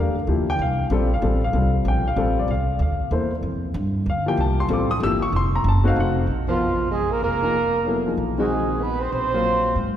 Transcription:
Already playing: upright bass E2, grand piano A3 D4 G4 A#4
0.00 grand piano F5
0.16 muted upright bass stroke
0.27 upright bass D2, grand piano F3 A#3 E4 G4
0.50 grand piano G5
0.59 upright bass C2, grand piano F5
0.90 upright bass A#1, grand piano G3 C4 F4 A4
0.95 grand piano D5
1.14 grand piano F5
1.22 upright bass A1, grand piano G3 C4 F4 A4
1.44 grand piano F5
1.53 upright bass C2, grand piano G3 C4 F4 A4
1.85 upright bass A#1, grand piano G5
2.08 grand piano F5
2.16 upright bass A1, grand piano G3 C4 F4 A4
2.39 grand piano D5
2.48 upright bass C2, grand piano F5
2.79 upright bass D2, grand piano F5
2.99 muted upright bass stroke
3.11 upright bass E2, grand piano A#3 E4 A4 C5
3.43 upright bass F2
3.74 upright bass G2
4.06 upright bass D2, grand piano F5
4.26 grand piano F3 A#3 E4 G4 G5
4.37 upright bass C2, grand piano A5
4.60 grand piano C6
4.68 upright bass A1, grand piano G3 C4 F4 A4
4.73 grand piano D6
4.91 grand piano D#6
5.00 upright bass G1, grand piano F3 A#3 E4 G4 E6
5.22 grand piano C#6
5.32 upright bass F1, grand piano C6
5.55 grand piano A#5
5.64 upright bass F#1
5.68 grand piano A5
5.84 grand piano A3 C4 D#4 F#4 F5
5.96 upright bass F1
6.00 grand piano F#5
6.27 upright bass A#1
6.48 tenor saxophone F3, grand piano F3 B3 F4 A#4, trumpet F4
6.91 tenor saxophone G#3, trumpet G#4
7.11 tenor saxophone A#3, trumpet A#4
7.22 upright bass F1, tenor saxophone A#3, trumpet A#4
7.42 grand piano F3 A#3 D#4 G#4
7.86 grand piano F#3 B3 E4 A4
8.06 grand piano F3 A#3 D#4 G#4
8.17 upright bass A#1
8.38 grand piano D#3 G#3 C4 F#4, tenor saxophone G#3, trumpet G#4
8.80 tenor saxophone B3, trumpet B4
9.01 tenor saxophone C4, trumpet C5
9.12 upright bass A#1, tenor saxophone C4, trumpet C5
9.34 grand piano F#3 A#3 F4 A#4
9.76 upright bass G#2

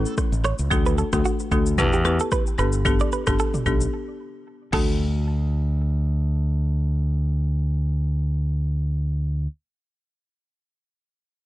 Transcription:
Already playing: marimba A3 C#4 E4 A4
0.06 clean electric guitar A4, shaker
0.17 kick, cross-stick, shaker
0.32 fingered electric bass A1, shaker
0.44 clean electric guitar C#5, cross-stick, shaker
0.59 fingered electric bass C#2, shaker
0.71 fingered electric bass D2, marimba A3 D4 F#4 A4, kick, shaker
0.86 clean electric guitar B4, shaker
0.98 clean electric guitar A4, shaker
1.13 fingered electric bass D2, marimba A3 D4 F#4 A4, kick, cross-stick, shaker
1.25 clean electric guitar F#4, shaker
1.40 shaker
1.51 fingered electric bass D2, marimba A3 D4 F#4 A4, kick, shaker
1.66 shaker
1.78 fingered electric bass E2, marimba B3 E4 G4 B4, kick, mid tom, shaker
1.93 clean electric guitar G4, shaker
2.05 marimba B3 E4 G4 B4, cross-stick, shaker
2.20 clean electric guitar A4, shaker
2.31 clean electric guitar B4, kick, cross-stick, shaker
2.47 shaker
2.58 fingered electric bass G1, marimba B3 D4 G4 A4, clean electric guitar B4, shaker
2.73 shaker
2.85 marimba B3 D4 G4 A4, kick, shaker
3.00 clean electric guitar D5, shaker
3.12 clean electric guitar B4, shaker
3.27 fingered electric bass G1, marimba B3 D4 G4 A4, kick, cross-stick, shaker
3.39 clean electric guitar A4, shaker
3.54 mid tom, shaker
3.66 fingered electric bass B1, marimba B3 D4 G4 A4, kick, shaker
3.81 shaker
4.72 fingered electric bass D2, marimba A3 D4 F#4 A4, clean electric guitar A4, kick, crash

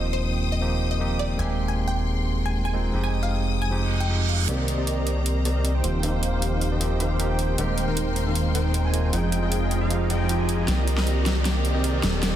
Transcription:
Already playing: analog synth bass D#1, tine electric piano F3 A#3 C4 D#4 G4, string section C5 G5 D#6
0.13 synth pluck C5
0.52 synth pluck D#5
0.60 tine electric piano F3 A#3 C4 D#4 G4
0.91 synth pluck D#5
0.99 tine electric piano F3 A#3 C4 D#4 G4
1.19 synth pluck D5
1.37 analog synth bass D#1, tine electric piano G#3 A#3 C4 D#4 G4, string section G#3 G5 C6, synth pluck G#5
1.68 synth pluck G#5
1.88 synth pluck G5
2.46 synth pluck G#5
2.65 synth pluck G#5
2.73 tine electric piano G#3 A#3 C4 D#4 F4
2.92 analog synth bass F1, tine electric piano F3 G#3 C4 D#4, string section D#6
2.96 tine electric piano G4
3.03 synth pluck G#5
3.23 synth pluck F5
3.62 synth pluck G#5
3.70 tine electric piano F3 G#3 C4 D#4 G4, reverse cymbal
4.00 synth pluck G5
4.09 tine electric piano F3 G#3 C4 D#4 G4
4.29 synth pluck F5
4.46 analog synth bass C2, tine electric piano D#3 A#3 C4, analog polysynth C4 G4 A#4 D5 D#5, string section C5 A#5, closed hi-hat, riser
4.50 tine electric piano G4
4.68 closed hi-hat
4.78 analog polysynth C4 G4 A#4 D5 D#5
4.87 closed hi-hat
5.07 closed hi-hat
5.16 analog polysynth C4 G4 A#4 D5 D#5
5.26 closed hi-hat
5.45 analog polysynth C4 G4 A#4 D5 D#5, closed hi-hat
5.65 closed hi-hat
5.75 analog polysynth D#3 D#4 G4 C5 G5
5.83 analog synth bass D#1, tine electric piano F3 A#3 C4 D#4 F4, string section G5, closed hi-hat
6.01 analog polysynth D#3 D#4 G4 C5 F5, tine electric piano F3 A#3 C4 D#4, closed hi-hat
6.05 tine electric piano G4
6.23 closed hi-hat
6.33 analog polysynth D#3 D#4 G4 C5 F5
6.42 closed hi-hat
6.61 closed hi-hat
6.72 analog polysynth D#3 D#4 G4 C5 D#5
6.80 tine electric piano F3 A#3 C4 D#4 G4, closed hi-hat
7.00 analog polysynth D#3 D#4 G4 C5 F5, closed hi-hat
7.19 tine electric piano F3 A#3 C4 D#4 G4, closed hi-hat
7.30 analog polysynth D#3 D#4 G4 C5 G5
7.39 closed hi-hat
7.56 analog synth bass D#1, analog polysynth D#3 D#4 A#4 C5 G5, tine electric piano G#3 A#3 C4 D#4 G4, string section G#3 C6, closed hi-hat
7.78 closed hi-hat
7.88 analog polysynth D#3 D#4 A#4 C5 G5
7.97 closed hi-hat
8.16 closed hi-hat
8.26 analog polysynth D#3 D#4 A#4 C5 F5
8.35 closed hi-hat
8.55 analog polysynth D#3 D#4 A#4 C5 G5, closed hi-hat
8.74 closed hi-hat
8.84 analog polysynth D#3 D#4 A#4 C5 G#5
8.93 tine electric piano G#3 A#3 C4 D#4 F4, closed hi-hat
9.11 analog synth bass F1, tine electric piano F3 G#3 C4 D#4, analog polysynth F3 F4 G#4 D#5 G5, closed hi-hat
9.15 tine electric piano G5
9.32 closed hi-hat
9.43 analog polysynth F3 F4 G#4 D#5 G5
9.52 closed hi-hat
9.71 closed hi-hat
9.81 analog polysynth F3 F4 G#4 D#5 F5
9.89 tine electric piano F3 G#3 C4 D#4 G4, closed hi-hat
10.10 analog polysynth F3 F4 G#4 D#5 G5, closed hi-hat
10.28 tine electric piano F3 G#3 C4 D#4 G4, closed hi-hat
10.39 analog polysynth F3 F4 G#4 D#5 G#5
10.49 closed hi-hat
10.66 analog synth bass C2, tine electric piano D#3 A#3 C4, analog polysynth C4 G4 A#4 D5 D#5, string section C5 A#5, snare, closed hi-hat
10.70 tine electric piano G4
10.87 closed hi-hat
10.97 analog polysynth C4 G4 A#4 D5 D#5, snare
11.07 closed hi-hat
11.26 snare, closed hi-hat
11.36 analog polysynth C4 G4 A#4 D5 D#5
11.43 tine electric piano D#3 A#3 C4, analog polysynth C4 G4 A#4 D5 D#5, snare, closed hi-hat
11.47 tine electric piano G4
11.65 closed hi-hat
11.75 analog polysynth C4 G4 A#4 D5 D#5
11.84 closed hi-hat
12.03 analog synth bass D#1, string section G5, snare, closed hi-hat
12.13 analog polysynth C4 G4 A#4 D5 D#5
12.21 tine electric piano D#3 A#3 C4, analog polysynth C4 G4 A#4 D5 D#5, snare, closed hi-hat
12.25 tine electric piano G4

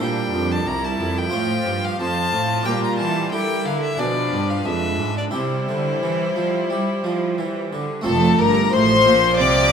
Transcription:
Already playing: violin section D4
0.00 cello section A#2, harpsichord A#2 E4 C5, viola section G3, violin section A#4, violin G5
0.34 harpsichord F2, cello section F2
0.52 violin A5
0.67 harpsichord C2, cello section C2, violin section E4, violin A#5
0.84 violin A5
1.01 cello section F2, harpsichord F2
1.18 violin G5
1.30 cello section A2, harpsichord A2 F4 C5, viola section F3, violin section F4
1.35 violin section C5
1.66 cello section G2, harpsichord G2
1.85 violin F5
1.99 harpsichord F2, cello section F2, viola section F3, violin section F4, violin A5
2.32 harpsichord A2, cello section A2
2.63 harpsichord A#2 D4 A#4, cello section A#2, viola section G3, violin G5
2.67 violin section A#4
2.83 violin A#5
2.98 cello section E3, harpsichord E3, violin A5
3.32 viola section D3, harpsichord G3, cello section G3, violin section E4 A#4, violin G5
3.65 harpsichord D3, cello section D3, violin F5
3.83 violin E5
3.96 harpsichord B2 D4 G#4, cello section B2, viola section F3, violin section D4, violin D5
4.00 violin section B4
4.32 cello section G2, harpsichord G2
4.50 violin F5
4.65 harpsichord F2, cello section F2, viola section G#3, violin section D4, violin E5
4.99 cello section G#2, harpsichord G#2
5.18 violin D5
5.31 cello section C3, harpsichord C3 E4 G4, viola section G3, violin section E4 G4, violin C5
5.68 cello section D3, harpsichord D3
6.03 cello section E3, harpsichord E3
6.36 cello section F3, harpsichord F3
6.70 cello section G3, harpsichord G3
7.04 harpsichord F3, cello section F3
7.38 harpsichord E3, cello section E3
7.73 harpsichord D3, cello section D3
8.01 harpsichord A3 C4 F4, violin A4
8.05 double bass section F1, harpsichord F2, cello section F2, viola section A3, violin section A4 A5
8.39 double bass section G1, harpsichord G2, cello section G2, violin A#4, violin section A#4 A#5
8.72 double bass section A1, harpsichord A2, cello section A2, viola section F3, violin section C5 C6, violin C5
9.06 double bass section A#1, cello section A#2, harpsichord A#2
9.38 double bass section C2, cello section C3, harpsichord C3, violin section D5 D6, violin D5

